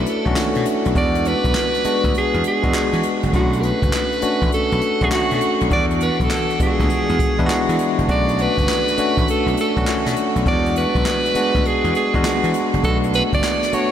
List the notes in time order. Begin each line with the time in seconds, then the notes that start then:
Already playing: A3 C#4 D4 E4 F#4
0.06 A4, closed hi-hat
0.25 B1 A3 C#4 D4 F#4, kick, closed hi-hat
0.36 snare, clap
0.55 B2, closed hi-hat
0.66 closed hi-hat
0.85 B1, closed hi-hat
0.95 E2 G#3 B3 D4 F#4 D5, kick, closed hi-hat
1.15 closed hi-hat
1.25 B4, closed hi-hat
1.44 B1, kick, closed hi-hat
1.54 snare, clap
1.74 closed hi-hat
1.84 G#3 B3 D4 F#4, muted slap bass stroke, closed hi-hat
2.04 D2, kick, closed hi-hat
2.14 G#4, closed hi-hat
2.34 E2, closed hi-hat
2.44 G#4, closed hi-hat
2.63 E2 G#3 B3 D4 F#4, kick, closed hi-hat
2.74 snare, clap
2.93 E3, closed hi-hat
3.03 closed hi-hat
3.23 F#1, closed hi-hat
3.33 B1 A3 C#4 D4 E4 F#4, kick, closed hi-hat
3.41 F#4
3.53 closed hi-hat
3.60 A#4, closed hi-hat
3.65 B4
3.82 F#1, kick, closed hi-hat
3.92 snare, clap
4.12 closed hi-hat
4.22 A3 C#4 D4 F#4, muted slap bass stroke, closed hi-hat
4.42 A1, kick, closed hi-hat
4.52 A4, closed hi-hat
4.72 B1, closed hi-hat
4.81 closed hi-hat
5.01 B1 A3 C#4 D4 F#4 G#4, kick, closed hi-hat
5.11 F#4, snare, clap
5.31 B2, closed hi-hat
5.41 closed hi-hat
5.61 B1, closed hi-hat
5.70 E2 G3 B3 D4 F#4 D5, kick, closed hi-hat
5.77 E3
5.90 closed hi-hat
6.00 B4, closed hi-hat
6.20 B1 A4, kick, closed hi-hat
6.30 snare, clap
6.50 closed hi-hat
6.60 G#3 B3 D4 F4 G#4, muted slap bass stroke, kick, closed hi-hat
6.67 F#4
6.80 D2, kick, closed hi-hat
6.90 closed hi-hat
7.09 E2, closed hi-hat
7.19 kick, closed hi-hat
7.38 E2 G#3 B3 D4 E4, kick, closed hi-hat
7.46 F#4, snare, clap
7.69 E3, closed hi-hat
7.79 closed hi-hat
7.98 F#1, closed hi-hat
8.08 B1 A3 C#4 D4 F#4 D5, kick, closed hi-hat
8.29 closed hi-hat
8.38 B4, closed hi-hat
8.58 F#1, kick, closed hi-hat
8.68 snare, clap
8.88 closed hi-hat
8.97 A3 C#4 D4 F#4, muted slap bass stroke, closed hi-hat
9.17 A1, kick, closed hi-hat
9.28 A4, closed hi-hat
9.46 B1, closed hi-hat
9.57 A4, closed hi-hat
9.76 B1 A3 C#4 D4 F#4, kick, closed hi-hat
9.87 snare, clap
10.06 B2, snare, closed hi-hat
10.16 closed hi-hat
10.36 B1, closed hi-hat
10.46 E2 F#3 B3 D4 F#4 D5, kick, closed hi-hat
10.52 G#3
10.66 closed hi-hat
10.76 B4, closed hi-hat
10.95 B1, kick, closed hi-hat
11.05 snare, clap
11.25 closed hi-hat
11.35 G#3 B3 D4 F#4, muted slap bass stroke, closed hi-hat
11.55 D2, kick, closed hi-hat
11.65 G#4, closed hi-hat
11.84 E2, closed hi-hat
11.95 G#4, closed hi-hat
12.14 E2 G#3 B3 D4 F#4, kick, closed hi-hat
12.24 snare, clap
12.44 E3, closed hi-hat
12.54 closed hi-hat
12.74 F#1, closed hi-hat
12.84 B1 A3 B3 D4 F#4 A4, kick, closed hi-hat
13.03 closed hi-hat
13.13 B4, closed hi-hat
13.33 F#1 D5, kick, closed hi-hat
13.43 snare, clap
13.63 snare, closed hi-hat
13.72 A3 B3 D4 F#4 C#5, muted slap bass stroke, closed hi-hat